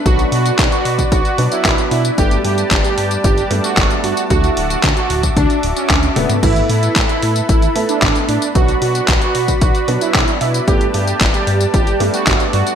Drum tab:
CC |----------------|----------------|----------------|x---------------|
HH |xxoxxxoxxxoxxxox|xxoxxxoxxxoxxxox|xxoxxxoxxxoxxxox|xxoxxxoxxxoxxxox|
TB |xx-xxx-xxx-xxx-x|xx-xxx-xxx-xxx-x|xx-xxx-xxx-xxx-x|xx-xxx-xxx-xxx-x|
CP |----x-------x---|----x-------x---|----x-------x---|----x-------x---|
T1 |----------------|----------------|--------------o-|----------------|
T2 |----------------|----------------|---------------o|----------------|
BD |o---o--oo---o---|o---o---o---o---|o---o--oo---o---|o---o---o---o---|

CC |----------------|----------------|
HH |xxoxxxoxxxoxxxox|xxoxxxoxxxoxxxox|
TB |xx-xxx-xxx-xxx-x|xx-xxx-xxx-xxx-x|
CP |----x-------x---|----x-------x---|
T1 |----------------|----------------|
T2 |----------------|----------------|
BD |o---o--oo---o---|o---o---o---o---|